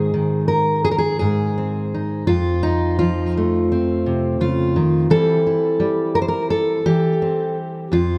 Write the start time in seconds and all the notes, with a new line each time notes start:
Already playing: G#2 D#3 C4 D#4 G#4
0.14 D#3
0.48 A#4
0.85 G#4
0.91 A#4
0.98 G#4
1.19 G#2 G#4
1.58 C4
1.94 D#4
2.27 F2 F4
2.63 D#4
2.99 F3 F4
3.37 A3
3.72 C4
4.06 C3
4.41 C#3 F4
4.76 D#3
5.10 E3 G3 C4 E4 A4
5.47 E4
5.80 G3
6.15 A#4
6.22 C5
6.28 A#4
6.50 A4
6.86 E3 G4
7.22 C4
7.92 F2 F4